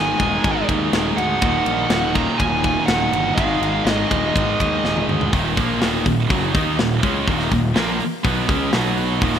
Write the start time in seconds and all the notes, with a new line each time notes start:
Already playing: G#1 G#2 D#3 G#3 B3 D#4 G#5
0.00 G#2 D#3
0.09 G#2 D#3
0.16 G#2 D#3 G#3, kick, ride
0.20 D#1
0.25 G#2 D#3
0.32 G#2 D#3
0.40 G#2 D#3
0.44 G#1, kick, ride
0.48 G#2 D#3
0.56 G#2 D#3
0.63 G#2 D#3
0.69 D#2 G#2 D#3, kick, ride
0.79 G#2 D#3
0.87 G#2 D#3
0.93 D#1 G#2 D#3, snare, ride
1.03 G#2 D#3
1.10 G#2 D#3
1.17 D2 G#2 D#3 F#5, ride
1.27 G#2 D#3
1.34 G#2 D#3
1.41 D#1 D#2 A#2 D#3 F#3 A#3 D#4, kick, ride
1.48 D#2 A#2
1.57 D#2 A#2
1.65 A#1 D#2 A#2, ride
1.73 D#2 A#2
1.81 D#2 A#2
1.89 D#1 D#2 A#2, snare, ride
1.96 D#2 A#2
2.04 D#2 A#2
2.11 D#2 A#2 D#3 A#5
2.15 kick, ride
2.20 D#2 A#2
2.28 D#2 A#2
2.36 D#2 A#2 G#5
2.40 D#1 D#2, kick, ride
2.45 A#2
2.50 D#2 A#2
2.58 D#2 A#2
2.64 D#2 A#2, kick, ride
2.74 D#2 A#2
2.82 D#2 A#2
2.86 D#1 F#5, snare, ride
2.90 D#2 A#2
2.98 D#2 A#2
3.05 D#2 A#2
3.12 G1 D#2 A#2, ride
3.22 D#2 A#2
3.29 D#2 A#2
3.35 G#1 G#2 D#3 G#3 B3 D#4 F5, kick, ride
3.40 G#3
3.45 G#2 D#3
3.54 G#2 D#3
3.60 G#1 G#2 D#3, ride
3.70 G#2 D#3
3.77 G#2 D#3
3.84 G#1 G#2 D#3 D#5, snare, ride
3.92 G#2 D#3
4.00 G#2 D#3
4.08 D#1 G#2 D#3 G#3, kick, ride
4.16 G#2 D#3
4.24 G#2 D#3
4.31 G#2 D#3
4.36 G#1 G#2 D#3, kick, ride
4.47 G#2 D#3
4.55 G#2 D#3
4.60 D#2 G#2 D#3, kick, ride
4.71 G#2 D#3
4.78 G#2 D#3
4.84 D#1 G#2 D#3, snare
4.95 G#2 D#3, high tom
5.02 G#2 D#3
5.07 D2 G#2 D#3, mid tom
5.17 G#2 D#3
5.21 G#2 D#3, floor tom
5.32 D#1 D#2 A#2 D#3, kick, open hi-hat
5.56 A#1 A#2 F3 A#3, kick, open hi-hat
5.81 D#1 D#2 A#2 D#3, snare, open hi-hat
6.06 D#1 D#2 A#2, kick, open hi-hat
6.29 F#1 F#2 C#3 F#3, kick, open hi-hat
6.54 D#2 D#3 A#3 D#4, kick, open hi-hat
6.78 D#1 D#2 A#2, snare, open hi-hat
7.02 C#2 C#3 G#3 C#4, kick, open hi-hat
7.27 D#1 D#2 A#2 D#3, kick, open hi-hat
7.40 snare
7.51 D#1 D#2 A#2, kick, open hi-hat
7.75 A#1 A#2 F3 A#3, snare, open hi-hat
8.00 muted picked electric bass stroke, muted distorted electric guitar stroke, open hi-hat
8.23 B1 B2 F#3 B3, kick, open hi-hat
8.48 C#2 C#3 G#3 C#4, kick, open hi-hat
8.72 B1 B2 F#3 B3, snare, open hi-hat
8.97 open hi-hat
9.20 D#1 D#2 A#2 D#3, kick, open hi-hat
9.34 snare